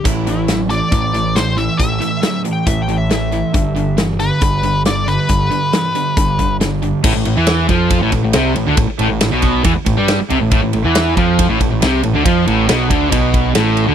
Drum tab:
CC |x-------|--------|--------|--------|
RD |--------|--------|--------|--------|
HH |xxxxxxxx|xxxxxxxx|xxxxxxxx|xxxxxxxx|
SD |--o--oo-|--o---o-|--o---o-|--o---o-|
BD |o---o---|o---o---|o---o---|o---oo--|

CC |x-------|--------|--------|--------|
RD |-xxxxxxx|xxxxxxxx|xxxxxxxx|xxxxxxxx|
HH |--------|--------|--------|--------|
SD |--o---o-|--o---o-|--o---o-|--o---o-|
BD |o--ooo--|o--ooo--|o--ooo--|o--ooo--|